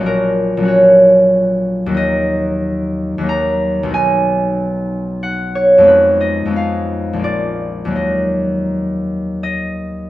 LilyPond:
<<
  \new Staff \with { instrumentName = "Harp" } { \time 3/4 \key fis \major \tempo 4 = 92 ais'4 cis''2 | \key ees \minor ees''2 bes''4 | aes''2 fis''8 des''8 | ces''8 ees''8 f''4 d''4 |
ees''2 ees''4 | }
  \new Staff \with { instrumentName = "Harp" } { \time 3/4 \key fis \major <ais,, fis cis' fis'>4 <ais,, fis cis' fis'>2 | \key ees \minor <ees, ges bes ees'>2 <ees, ges bes ees'>4 | <b,, fis b dis'>2. | <f, aes ces' ees'>4 <f, aes ces' ees'>4 <bes,, aes bes f'>4 |
<ees, ges bes ees'>2. | }
>>